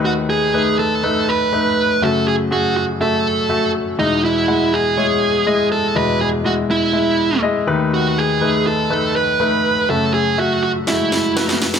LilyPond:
<<
  \new Staff \with { instrumentName = "Lead electric guitar" } { \time 4/4 \key e \major \tempo 4 = 122 fis'8 gis'4 a'4 b'4. | a'8 gis'8 fis'8 fis'8 a'4. r8 | dis'8 e'4 gis'2 a'8 | b'8 gis'8 fis'8 e'4. r4 |
fis'8 gis'4 a'4 b'4. | a'8 gis'8 fis'8 fis'8 e'4. r8 | }
  \new Staff \with { instrumentName = "Grand piano" } { \time 4/4 \key e \major <a dis' b'>8. r16 <a dis' b'>4 <a dis' b'>4 <a dis' b'>4 | <a fis' e''>4 <a fis' gis'>4 <a fis' e''>4 <a fis' e''>4 | <gis e' dis''>4 <gis e' fis''>4 <gis e' cis''>4 <gis e' dis''>4 | <gis e' dis''>4 <gis e' dis''>4 <gis e' e''>4 <gis e' dis''>8 <a dis' b'>8~ |
<a dis' b'>8. r16 <a dis' b'>4 <a dis' b'>4 <a dis' b'>4 | <a fis' e''>4 <a fis' e''>4 <gis a fis' e''>4 <a fis' b'>4 | }
  \new Staff \with { instrumentName = "Grand piano" } { \clef bass \time 4/4 \key e \major <dis, dis>2.~ <dis, dis>8 r8 | <fis, cis>1 | <e, b,>1 | <e, b,>2.~ <e, b,>8 <dis, dis>8~ |
<dis, dis>2.~ <dis, dis>8 r8 | <fis, cis>1 | }
  \new DrumStaff \with { instrumentName = "Drums" } \drummode { \time 4/4 r4 r4 r4 r4 | r4 r4 r4 r4 | r4 r4 r4 r4 | r4 r4 r4 r4 |
r4 r4 r4 r4 | r4 r4 sn8 sn8 sn16 sn16 sn16 sn16 | }
>>